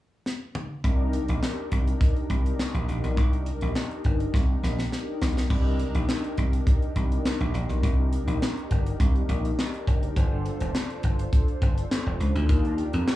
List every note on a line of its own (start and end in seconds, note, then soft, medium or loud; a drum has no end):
0.26 snare medium
0.55 mid tom medium
0.84 1.17 C2 loud
0.84 5.46 D4 medium
0.84 5.46 D#4 medium
0.84 5.46 G4 medium
0.84 5.47 A#4 medium
0.84 kick loud
0.84 closed hi-hat medium
1.13 closed hi-hat medium
1.28 1.39 A#1 medium
1.28 closed hi-hat medium
1.43 snare loud
1.43 clap medium
1.72 1.93 C2 medium
1.72 kick medium
1.72 closed hi-hat medium
1.87 closed hi-hat medium
2.01 kick loud
2.01 closed hi-hat loud
2.17 closed hi-hat soft
2.30 2.51 C2 medium
2.30 kick medium
2.30 closed hi-hat medium
2.46 closed hi-hat soft
2.59 snare loud
2.59 clap medium
2.74 2.84 A#1 medium
2.74 closed hi-hat soft
2.88 2.99 A#1 medium
2.88 closed hi-hat medium
3.04 3.14 B1 medium
3.04 closed hi-hat soft
3.17 3.50 C2 loud
3.17 kick loud
3.17 closed hi-hat medium
3.33 closed hi-hat soft
3.46 closed hi-hat medium
3.61 3.72 A#1 medium
3.61 closed hi-hat medium
3.75 snare medium
3.75 clap medium
3.91 closed hi-hat soft
4.04 4.26 G1 medium
4.04 kick medium
4.04 closed hi-hat medium
4.20 closed hi-hat soft
4.34 4.55 C2 loud
4.34 kick loud
4.34 snare medium
4.63 4.84 A#1 medium
4.63 snare medium
4.79 snare medium
4.92 snare medium
5.21 5.43 B1 medium
5.21 snare loud
5.37 snare medium
5.50 5.83 C2 loud
5.50 10.12 D4 medium
5.50 10.12 D#4 medium
5.50 10.13 G4 medium
5.50 5.58 A4 medium
5.50 kick loud
5.50 crash medium
5.58 10.16 A#4 medium
5.79 closed hi-hat medium
5.95 6.05 A#1 medium
5.95 closed hi-hat medium
6.09 snare loud
6.09 clap medium
6.24 closed hi-hat soft
6.38 6.59 C2 medium
6.38 kick medium
6.38 closed hi-hat medium
6.53 closed hi-hat medium
6.67 kick loud
6.67 closed hi-hat medium
6.82 closed hi-hat soft
6.96 7.17 C2 medium
6.96 kick medium
6.96 closed hi-hat medium
7.12 closed hi-hat soft
7.25 snare loud
7.25 clap medium
7.40 7.50 A#1 medium
7.40 closed hi-hat soft
7.54 7.65 A#1 loud
7.54 closed hi-hat medium
7.69 7.79 B1 medium
7.69 closed hi-hat medium
7.83 8.16 C2 loud
7.83 kick loud
7.83 closed hi-hat loud
8.13 closed hi-hat medium
8.27 8.37 A#1 medium
8.27 closed hi-hat medium
8.42 snare loud
8.42 clap medium
8.57 closed hi-hat soft
8.71 8.92 G1 medium
8.71 kick medium
8.71 closed hi-hat medium
8.86 closed hi-hat medium
9.00 9.21 C2 loud
9.00 kick loud
9.00 closed hi-hat medium
9.16 closed hi-hat soft
9.29 9.50 A#1 loud
9.29 kick medium
9.29 closed hi-hat medium
9.45 closed hi-hat medium
9.59 snare loud
9.59 clap medium
9.74 closed hi-hat soft
9.87 10.09 F#1 medium
9.87 kick medium
9.87 closed hi-hat medium
10.03 closed hi-hat soft
10.15 10.49 G1 loud
10.15 12.45 D4 medium
10.15 12.45 F4 medium
10.15 12.45 A4 medium
10.15 12.46 C5 medium
10.15 kick loud
10.15 closed hi-hat medium
10.46 closed hi-hat medium
10.60 10.71 F1 medium
10.60 closed hi-hat medium
10.75 snare loud
10.75 clap medium
10.90 closed hi-hat soft
11.03 11.25 G1 medium
11.03 kick medium
11.03 closed hi-hat medium
11.19 closed hi-hat medium
11.33 kick loud
11.33 closed hi-hat loud
11.48 closed hi-hat soft
11.62 11.83 G1 medium
11.62 kick medium
11.62 closed hi-hat medium
11.78 closed hi-hat medium
11.91 snare loud
11.91 clap loud
12.06 12.16 F1 medium
12.20 12.31 C#2 medium
12.20 closed hi-hat medium
12.35 12.45 D2 medium
12.35 closed hi-hat soft
12.48 12.82 D#2 loud
12.48 13.16 D4 medium
12.48 13.16 F4 medium
12.48 13.16 G4 medium
12.48 13.16 A#4 medium
12.48 kick loud
12.48 closed hi-hat loud
12.65 closed hi-hat soft
12.78 closed hi-hat medium
12.93 13.04 F2 medium
12.93 closed hi-hat medium
13.08 snare loud
13.08 clap medium